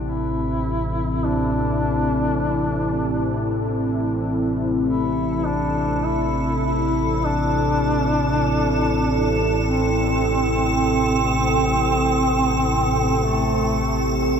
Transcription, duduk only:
0.04 1.27 E4 medium
1.25 3.65 D4 medium
4.84 5.47 E4 medium
5.46 6.07 D4 medium
6.06 6.65 E4 medium
6.66 7.28 E4 medium
7.26 9.39 D4 medium
9.65 13.26 C4 medium
13.25 14.18 A3 medium

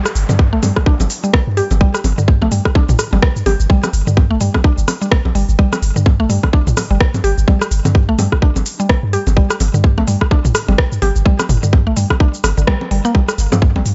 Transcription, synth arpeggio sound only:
0.29 0.32 D3 medium
0.53 0.58 A3 loud
0.63 0.73 G3 medium
0.86 0.93 D4 medium
1.24 1.31 G3 medium
1.57 1.64 G4 loud
1.81 1.91 G3 loud
2.18 2.21 D3 medium
2.42 2.47 A3 loud
2.52 2.62 G3 medium
2.75 2.82 D4 medium
3.13 3.20 G3 medium
3.46 3.53 G4 loud
3.70 3.80 G3 loud
4.07 4.10 D3 medium
4.31 4.35 A3 loud
4.41 4.51 G3 medium
4.64 4.71 D4 medium
5.02 5.06 G3 medium
5.35 5.42 G3 medium
5.59 5.69 G3 loud
5.96 5.99 D3 medium
6.20 6.25 A3 loud
6.30 6.40 G3 medium
6.53 6.60 D4 medium
6.91 6.98 G3 medium
7.24 7.31 G4 loud
7.48 7.58 G3 loud
7.85 7.88 D3 medium
8.09 8.14 A3 loud
8.19 8.29 G3 medium
8.42 8.49 D4 medium
8.80 8.87 G3 medium
9.13 9.20 G4 loud
9.37 9.47 G3 loud
9.74 9.77 D3 medium
9.98 10.03 A3 loud
10.07 10.18 G3 medium
10.31 10.38 D4 medium
10.68 10.76 G3 medium
11.02 11.09 G4 loud
11.26 11.36 G3 loud
11.63 11.66 D3 medium
11.87 11.92 A3 loud
11.97 12.07 G3 medium
12.20 12.27 D4 medium
12.58 12.62 D3 medium
12.67 12.74 G3 loud
12.91 12.98 G3 medium
13.05 13.12 A#3 loud
13.15 13.19 G3 medium
13.52 13.57 F3 medium
13.76 13.81 G3 medium

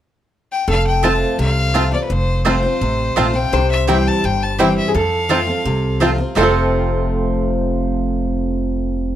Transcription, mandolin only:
1.03 1.12 C4 medium
1.03 1.12 F4 medium
1.03 1.13 C5 loud
1.03 1.13 A5 loud
1.74 1.83 C4 medium
1.74 1.83 F4 medium
1.74 1.84 C5 medium
1.74 1.84 A5 loud
2.45 2.54 C4 medium
2.45 2.55 F4 medium
2.45 2.55 C5 loud
2.45 2.55 A5 loud
3.16 3.25 C4 medium
3.16 3.26 F4 medium
3.16 3.26 C5 medium
3.16 3.26 A5 loud
3.88 3.97 C4 medium
3.88 3.97 E4 medium
3.88 3.97 C5 medium
3.88 3.97 G5 medium
4.59 4.68 C4 medium
4.59 4.68 E4 medium
4.59 4.68 C5 loud
4.59 4.68 G5 medium
5.29 5.39 C4 medium
5.29 5.39 F4 medium
5.29 5.39 C5 medium
5.29 5.39 A5 medium
6.00 6.10 C4 medium
6.00 6.10 F4 medium
6.00 6.10 C5 loud
6.00 6.10 A5 medium
6.35 9.16 C4 medium
6.35 9.16 F4 medium
6.35 9.16 C5 medium
6.35 9.16 A5 medium

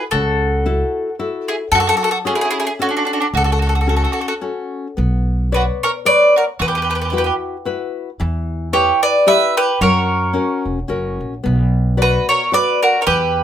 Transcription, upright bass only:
0.12 0.82 C#2 loud
1.72 1.91 F#2 medium
3.34 4.05 C#2 loud
4.98 5.69 B1 loud
6.60 7.29 E2 loud
8.20 8.90 E2 loud
9.81 10.35 F#2 loud
10.65 10.88 E1 medium
10.90 11.17 F#1 medium
11.21 11.43 A#1 medium
11.46 12.16 B1 loud
13.07 13.44 E2 loud

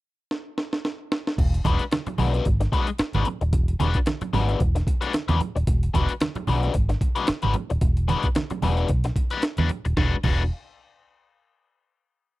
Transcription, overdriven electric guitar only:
1.65 1.82 G#3 medium
1.65 1.82 D4 medium
1.65 1.82 F#4 medium
1.65 1.82 B4 loud
1.92 muted overdriven electric guitar stroke soft
2.07 muted overdriven electric guitar stroke soft
2.18 2.32 G#3 medium
2.18 2.32 D4 medium
2.18 2.32 F#4 medium
2.18 2.32 B4 medium
2.33 2.45 G#3 soft
2.33 2.45 D4 medium
2.33 2.44 F#4 medium
2.33 2.44 B4 medium
2.60 muted overdriven electric guitar stroke medium
2.72 2.89 G#3 medium
2.72 2.88 D4 medium
2.72 2.87 F#4 medium
2.72 2.87 B4 loud
2.88 muted overdriven electric guitar stroke medium
3.00 muted overdriven electric guitar stroke soft
3.15 3.26 G#3 medium
3.15 3.26 D4 medium
3.15 3.26 F#4 medium
3.15 3.27 B4 medium
3.27 muted overdriven electric guitar stroke soft
3.41 muted overdriven electric guitar stroke soft
3.80 3.96 G#3 medium
3.80 3.97 D4 medium
3.80 3.97 F#4 medium
3.80 3.97 B4 medium
4.07 muted overdriven electric guitar stroke soft
4.22 muted overdriven electric guitar stroke soft
4.33 4.47 G#3 medium
4.33 4.47 D4 medium
4.33 4.47 F#4 medium
4.33 4.47 B4 medium
4.48 4.59 G#3 medium
4.48 4.59 D4 medium
4.48 4.59 F#4 medium
4.48 4.59 B4 medium
4.61 muted overdriven electric guitar stroke soft
4.75 muted overdriven electric guitar stroke soft
5.01 5.12 G#3 medium
5.01 5.13 D4 medium
5.01 5.13 F#4 medium
5.01 5.13 B4 medium
5.13 muted overdriven electric guitar stroke soft
5.28 5.39 G#3 medium
5.28 5.39 D4 medium
5.28 5.40 F#4 medium
5.28 5.40 B4 medium
5.40 muted overdriven electric guitar stroke soft
5.56 muted overdriven electric guitar stroke medium
5.94 6.11 G#3 medium
5.94 6.11 D4 medium
5.94 6.11 F#4 loud
5.94 6.12 B4 medium
6.21 muted overdriven electric guitar stroke soft
6.36 muted overdriven electric guitar stroke soft
6.47 6.61 G#3 medium
6.47 6.61 D4 medium
6.47 6.62 F#4 medium
6.47 6.62 B4 medium
6.63 6.73 G#3 medium
6.63 6.74 D4 medium
6.63 6.74 F#4 medium
6.63 6.73 B4 medium
6.74 muted overdriven electric guitar stroke soft
6.89 muted overdriven electric guitar stroke soft
7.15 7.27 G#3 medium
7.15 7.27 D4 medium
7.15 7.28 F#4 medium
7.15 7.28 B4 medium
7.28 muted overdriven electric guitar stroke soft
7.43 7.53 G#3 medium
7.43 7.54 D4 medium
7.43 7.54 F#4 medium
7.43 7.55 B4 medium
7.55 muted overdriven electric guitar stroke soft
7.70 muted overdriven electric guitar stroke medium
8.08 8.25 G#3 loud
8.08 8.25 D4 medium
8.08 8.26 F#4 medium
8.08 8.26 B4 loud
8.36 muted overdriven electric guitar stroke soft
8.51 muted overdriven electric guitar stroke soft
8.62 8.76 G#3 medium
8.62 8.76 D4 medium
8.62 8.76 F#4 medium
8.62 8.76 B4 medium
8.77 8.88 G#3 soft
8.77 8.88 D4 medium
8.77 8.88 F#4 medium
8.77 8.88 B4 medium
8.89 muted overdriven electric guitar stroke soft
9.05 muted overdriven electric guitar stroke medium
9.31 9.42 G#3 medium
9.31 9.43 D4 medium
9.31 9.43 F#4 medium
9.31 9.43 B4 medium
9.43 muted overdriven electric guitar stroke soft
9.58 9.69 G#3 medium
9.58 9.69 D4 medium
9.58 9.69 F#4 medium
9.58 9.70 B4 medium
9.70 muted overdriven electric guitar stroke soft
9.85 muted overdriven electric guitar stroke soft
9.97 10.14 G#3 medium
9.97 10.15 D4 medium
9.97 10.15 F#4 medium
9.97 10.15 B4 medium
10.24 10.41 G#3 medium
10.24 10.41 D4 medium
10.24 10.42 F#4 loud
10.24 10.42 B4 medium

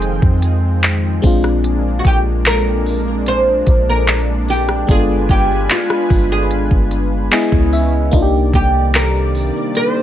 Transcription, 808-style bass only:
0.00 0.20 F1 loud
0.22 1.20 F2 loud
1.24 2.02 A#1 loud
2.05 3.63 A#1 loud
3.67 4.85 A#1 loud
4.89 5.28 G1 loud
5.29 5.68 G1 loud
6.10 6.52 G1 loud
6.51 6.70 G#1 loud
6.71 7.29 G1 loud
7.52 8.11 C#2 medium
8.13 8.52 C2 loud
8.54 9.51 C2 loud

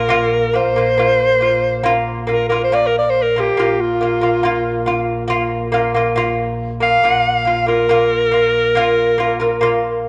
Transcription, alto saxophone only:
0.00 0.57 A#4 medium
0.56 2.04 C5 loud
2.32 2.47 A#4 medium
2.49 2.61 A#4 medium
2.64 2.76 C5 medium
2.74 2.88 D5 medium
2.87 2.97 A#4 medium
2.98 3.12 D5 medium
3.10 3.24 C5 medium
3.22 3.42 A#4 medium
3.40 3.83 G4 medium
3.81 5.39 F4 medium
6.82 7.65 F5 loud
7.68 10.09 A#4 medium

